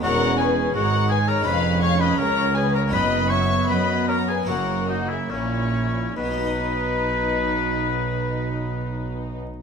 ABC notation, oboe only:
X:1
M:4/4
L:1/16
Q:1/4=75
K:B
V:1 name="Oboe"
F2 G2 F2 G A B2 c B A2 G A | B2 c2 B2 A G F2 D E C4 | B16 |]